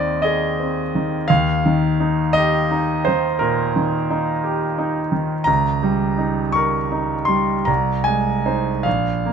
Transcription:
0.00 1.25 D#2 soft
0.00 0.95 D#3 soft
0.00 0.45 C4 soft
0.00 0.22 D5 medium
0.00 0.22 D#5 medium
0.22 0.80 G#4 soft
0.22 1.28 D#5 medium
0.60 1.15 C4 soft
0.95 1.30 D#3 soft
1.28 3.36 D#2 medium
1.28 2.34 F5 medium
1.66 2.21 D#3 soft
2.00 2.56 D#4 soft
2.33 3.04 D#5 medium
2.37 2.92 G4 soft
2.71 3.27 D#4 soft
3.05 3.62 D#3 soft
3.05 3.40 C5 medium
3.39 3.95 A#2 soft
3.39 5.13 A#4 medium
3.76 4.30 D#3 soft
4.10 4.65 D#4 soft
4.44 5.00 G4 soft
4.78 5.34 D#4 soft
5.12 5.48 D#3 soft
5.44 7.64 C#2 medium
5.44 6.54 A#5 medium
5.83 6.41 G3 soft
6.18 6.77 D#4 soft
6.52 7.14 A#4 soft
6.52 7.28 C#6 medium
6.92 7.53 D#4 soft
7.25 7.68 G3 soft
7.25 7.66 C6 medium
7.65 8.81 C2 medium
7.65 8.06 A#5 medium
8.04 8.70 G#3 soft
8.04 8.84 G#5 medium
8.46 8.81 D#4 soft
8.46 8.81 C5 soft
8.83 9.33 A#1 soft
8.83 9.33 F5 medium
9.26 9.33 A#3 soft

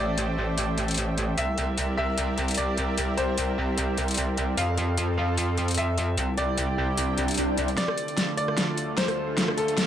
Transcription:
0.00 1.36 A1 medium
0.00 1.34 A3 medium
0.00 1.34 A4 medium
0.00 1.34 C5 medium
0.00 1.30 D5 medium
0.00 1.34 E5 medium
0.00 1.34 G5 medium
0.18 closed hi-hat medium
0.58 closed hi-hat medium
0.78 closed hi-hat soft
0.88 closed hi-hat soft
0.91 closed hi-hat medium
0.94 closed hi-hat medium
0.98 closed hi-hat medium
1.18 closed hi-hat soft
1.37 4.56 C2 medium
1.37 7.73 C4 medium
1.37 4.54 G4 medium
1.37 4.54 A#4 medium
1.37 4.54 D5 medium
1.37 4.54 E5 medium
1.37 1.90 E5 medium
1.37 closed hi-hat medium
1.58 closed hi-hat soft
1.78 closed hi-hat medium
1.98 2.50 E5 medium
2.18 closed hi-hat medium
2.38 closed hi-hat soft
2.48 closed hi-hat soft
2.51 closed hi-hat medium
2.54 3.10 D5 medium
2.54 closed hi-hat medium
2.58 closed hi-hat medium
2.78 closed hi-hat soft
2.98 closed hi-hat medium
3.17 4.50 C5 medium
3.17 closed hi-hat soft
3.38 closed hi-hat medium
3.78 closed hi-hat medium
3.98 closed hi-hat soft
4.08 closed hi-hat soft
4.11 closed hi-hat medium
4.14 closed hi-hat medium
4.17 closed hi-hat medium
4.37 closed hi-hat soft
4.57 6.16 F2 medium
4.57 6.16 F4 medium
4.57 6.16 A4 medium
4.57 5.10 F5 medium
4.57 closed hi-hat medium
4.78 closed hi-hat soft
4.98 closed hi-hat medium
5.18 5.70 F5 medium
5.38 closed hi-hat medium
5.58 closed hi-hat soft
5.68 closed hi-hat soft
5.71 closed hi-hat medium
5.74 closed hi-hat medium
5.78 6.30 E5 medium
5.78 closed hi-hat medium
5.98 closed hi-hat soft
6.17 7.76 C2 medium
6.17 7.76 C3 medium
6.17 7.76 E4 medium
6.17 7.76 G4 medium
6.17 7.76 G5 medium
6.17 closed hi-hat medium
6.38 7.70 D5 medium
6.38 closed hi-hat soft
6.58 closed hi-hat medium
6.97 closed hi-hat medium
6.97 swell medium
7.18 closed hi-hat soft
7.28 closed hi-hat soft
7.31 closed hi-hat medium
7.34 closed hi-hat medium
7.38 closed hi-hat medium
7.58 closed hi-hat soft
7.68 closed hi-hat soft
7.77 9.87 D2 medium
7.77 9.87 D3 medium
7.77 9.87 A3 medium
7.77 9.87 F4 medium
7.77 9.87 A4 medium
7.77 8.30 D5 medium
7.77 snare soft
7.77 closed hi-hat medium
7.77 riser medium
7.88 cross-stick medium
7.98 closed hi-hat medium
8.08 closed hi-hat soft
8.18 snare soft
8.18 closed hi-hat medium
8.37 8.90 D5 medium
8.37 closed hi-hat medium
8.48 cross-stick soft
8.58 snare soft
8.58 closed hi-hat medium
8.78 closed hi-hat soft
8.98 9.50 C5 medium
8.98 snare medium
8.98 closed hi-hat medium
9.08 cross-stick medium
9.08 closed hi-hat soft
9.38 snare soft
9.38 closed hi-hat medium
9.48 cross-stick medium
9.58 9.87 A4 medium
9.58 closed hi-hat soft
9.68 closed hi-hat soft
9.78 snare medium
9.78 closed hi-hat medium

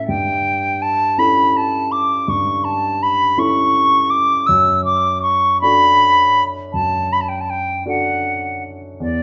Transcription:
0.00 0.12 C#4 soft
0.00 0.12 E4 soft
0.00 0.11 A4 soft
0.08 1.15 G2 soft
0.08 0.83 G5 medium
0.82 1.20 A5 medium
1.18 2.24 C#4 soft
1.18 2.24 E4 soft
1.18 2.24 A4 soft
1.18 1.58 B5 medium
1.57 1.93 A5 medium
1.91 2.30 D6 medium
2.28 3.34 G2 soft
2.28 2.66 C#6 medium
2.64 3.04 A5 medium
3.02 3.40 B5 medium
3.38 4.44 C#4 soft
3.38 4.44 E4 soft
3.38 4.44 A4 soft
3.38 4.11 C#6 medium
4.10 4.48 D6 medium
4.46 5.59 F#2 soft
4.46 4.84 E6 medium
4.84 5.21 D6 medium
5.22 5.60 C#6 medium
5.61 6.69 D4 soft
5.61 6.69 F#4 soft
5.61 6.69 A4 soft
5.61 6.44 B5 medium
6.73 7.83 F#2 soft
6.73 7.14 A5 medium
7.12 7.22 B5 medium
7.21 7.30 A5 soft
7.28 7.42 G5 medium
7.41 7.51 A5 soft
7.50 7.87 G5 medium
7.86 8.97 D4 soft
7.86 8.97 F#4 soft
7.86 8.97 A4 soft
7.86 8.63 F#5 medium
9.00 9.23 E2 soft
9.00 9.23 D5 medium

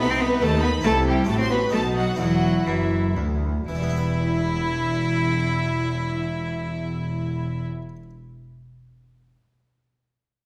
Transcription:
0.00 0.41 C2 medium
0.00 0.38 C3 medium
0.00 0.41 C3 medium
0.00 0.78 A3 medium
0.00 0.12 B3 loud
0.00 0.41 D#4 medium
0.00 0.79 D#4 medium
0.00 0.80 F#4 medium
0.00 0.04 B4 medium
0.10 0.22 C4 loud
0.10 0.21 C5 medium
0.10 0.21 C6 loud
0.20 0.44 B3 loud
0.20 0.42 B4 loud
0.20 0.29 B5 loud
0.42 0.84 D#2 medium
0.42 0.81 D#3 medium
0.42 0.84 D#3 medium
0.42 0.62 A3 loud
0.42 0.84 D#4 medium
0.42 0.64 A4 medium
0.42 0.63 A5 loud
0.63 0.71 B3 medium
0.63 0.72 B4 medium
0.63 0.85 B5 loud
0.81 1.27 C2 medium
0.81 1.27 C3 medium
0.81 1.24 C3 medium
0.81 0.92 A3 loud
0.81 1.23 C4 medium
0.81 1.26 E4 medium
0.81 1.28 E4 medium
0.81 0.93 A5 loud
0.86 1.06 A4 loud
1.06 1.29 G3 medium
1.06 1.28 G4 medium
1.06 1.28 G5 medium
1.24 1.72 A1 medium
1.24 1.68 A2 medium
1.24 1.72 A2 medium
1.24 1.40 A3 medium
1.24 1.69 C4 medium
1.24 1.70 F#4 medium
1.24 1.73 F#4 medium
1.29 1.39 A4 medium
1.29 1.33 A5 loud
1.38 1.50 C4 medium
1.38 1.50 C5 medium
1.38 1.51 C6 loud
1.51 1.59 B3 medium
1.51 1.73 B4 medium
1.51 1.73 B5 loud
1.69 2.18 B1 medium
1.69 2.15 B2 medium
1.69 2.18 B2 medium
1.69 1.80 A3 loud
1.69 2.14 B3 medium
1.69 2.16 D#4 medium
1.73 2.19 D#4 medium
1.73 1.81 A4 medium
1.73 1.96 A5 loud
1.95 2.17 F#3 medium
1.95 2.18 F#4 medium
1.95 2.18 F#5 loud
2.15 2.65 E1 medium
2.15 2.62 E2 medium
2.15 2.66 E2 medium
2.15 2.68 F#3 medium
2.15 2.63 B3 medium
2.15 3.64 E4 medium
2.15 3.44 E4 medium
2.19 2.66 F#4 medium
2.19 2.66 F#5 medium
2.66 3.15 F#1 medium
2.66 3.15 F#2 medium
2.66 3.13 F#2 medium
2.66 3.17 E3 medium
2.66 3.17 E4 medium
2.66 3.17 E5 medium
3.16 3.69 D2 medium
3.16 3.65 D2 medium
3.68 7.63 E1 medium
3.68 7.63 E2 medium
3.68 7.82 E3 medium
3.68 7.63 E4 medium
3.68 7.64 E4 medium
3.68 7.64 E5 medium
3.75 7.89 G3 medium
3.83 7.96 B3 medium
3.89 8.03 E4 medium
3.97 8.10 B4 medium

